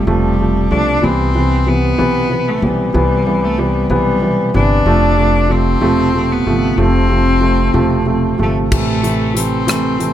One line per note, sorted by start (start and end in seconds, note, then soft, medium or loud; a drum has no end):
0.07 0.67 E1 medium
0.07 0.33 C3 medium
0.07 0.33 F3 medium
0.07 0.74 G3 medium
0.07 0.33 A3 medium
0.39 0.65 C3 medium
0.39 0.65 F3 soft
0.39 0.65 A3 medium
0.71 1.01 B1 medium
0.71 0.97 C3 medium
0.71 0.97 F3 medium
0.71 0.97 A3 medium
0.71 1.06 D4 medium
1.02 1.95 C2 medium
1.02 1.28 C3 medium
1.02 1.29 E3 medium
1.02 1.29 B3 medium
1.02 1.70 C4 medium
1.35 1.61 C3 medium
1.35 1.61 E3 medium
1.35 1.61 B3 medium
1.66 1.93 C3 medium
1.66 1.93 E3 medium
1.66 1.93 B3 medium
1.66 2.50 B3 medium
1.98 2.59 B1 medium
1.98 2.24 C3 medium
1.98 2.25 E3 medium
1.98 2.25 B3 medium
2.29 2.56 C3 medium
2.29 2.56 E3 soft
2.29 2.57 B3 medium
2.48 2.65 A3 medium
2.62 2.93 B1 medium
2.62 2.89 C3 medium
2.62 2.89 E3 medium
2.62 2.94 G3 medium
2.62 2.89 B3 medium
2.94 3.87 C2 medium
2.94 3.20 C3 medium
2.94 3.21 E3 medium
2.94 3.46 G3 medium
2.94 3.21 B3 medium
3.26 3.53 C3 medium
3.26 3.53 E3 medium
3.26 3.53 B3 medium
3.45 3.61 A3 medium
3.58 3.84 C3 medium
3.58 3.85 E3 medium
3.58 3.91 G3 medium
3.58 3.85 B3 medium
3.90 4.50 B1 medium
3.90 4.16 C3 medium
3.90 4.16 E3 medium
3.90 4.52 G3 medium
3.90 4.16 B3 medium
4.21 4.48 C3 medium
4.21 4.48 E3 medium
4.21 4.48 B3 medium
4.54 4.84 G1 medium
4.54 4.80 C3 medium
4.54 4.80 E3 medium
4.54 4.80 B3 medium
4.54 5.53 D4 medium
4.86 5.78 F1 medium
4.86 5.12 C3 medium
4.86 5.12 F3 medium
4.86 5.12 A3 medium
5.17 5.44 C3 medium
5.17 5.44 F3 medium
5.17 5.44 A3 medium
5.49 5.76 C3 medium
5.49 5.76 F3 medium
5.49 5.76 A3 medium
5.49 6.34 C4 medium
5.81 6.42 E1 medium
5.81 6.07 C3 medium
5.81 6.08 F3 medium
5.81 6.08 A3 medium
6.14 6.40 C3 medium
6.14 6.40 F3 soft
6.14 6.40 A3 medium
6.32 6.81 B3 medium
6.46 6.76 G1 medium
6.46 6.72 C3 medium
6.46 6.72 F3 medium
6.46 6.72 A3 medium
6.77 7.70 F1 medium
6.77 7.03 C3 medium
6.77 7.03 F3 medium
6.77 7.04 A3 medium
6.77 8.40 C4 medium
7.09 7.35 C3 medium
7.09 7.36 F3 medium
7.09 7.36 A3 medium
7.41 7.68 C3 medium
7.41 7.68 F3 medium
7.41 7.68 A3 medium
7.74 8.35 E1 medium
7.74 8.00 C3 medium
7.74 8.01 F3 medium
7.74 8.01 A3 medium
8.06 8.32 C3 medium
8.06 8.33 F3 medium
8.06 8.33 A3 medium
8.38 8.69 G1 medium
8.38 8.65 C3 medium
8.38 8.65 F3 medium
8.38 8.65 A3 medium
8.42 8.56 A3 medium
8.71 10.13 A1 medium
8.71 8.97 C3 medium
8.71 8.98 E3 medium
8.71 8.98 A3 medium
8.71 9.40 A3 medium
8.71 kick medium
8.71 crash medium
9.03 9.29 C3 medium
9.03 9.29 E3 medium
9.03 9.29 A3 medium
9.03 closed hi-hat soft
9.34 9.61 C3 medium
9.34 9.61 E3 medium
9.34 9.61 A3 medium
9.34 10.13 C4 medium
9.34 closed hi-hat medium
9.67 9.93 C3 medium
9.67 9.93 E3 medium
9.67 9.94 A3 medium
9.67 cross-stick medium
9.67 closed hi-hat medium
10.00 10.13 C3 medium
10.00 10.13 E3 medium
10.00 10.13 A3 medium
10.00 closed hi-hat soft